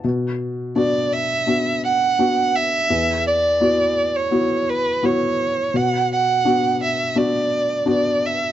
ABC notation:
X:1
M:4/4
L:1/16
Q:1/4=84
K:Bm
V:1 name="Violin"
z4 d2 e4 f4 e2- | e2 d4- d c3 B2 c4 | f2 f4 e2 d4 d2 e2 |]
V:2 name="Felt piano"
B,,4 [B,DF]4 [B,DF]4 [B,DF]4 | E,,4 [B,EF]4 [B,EF]4 [B,EF]4 | B,,4 [B,DF]4 [B,DF]4 [B,DF]4 |]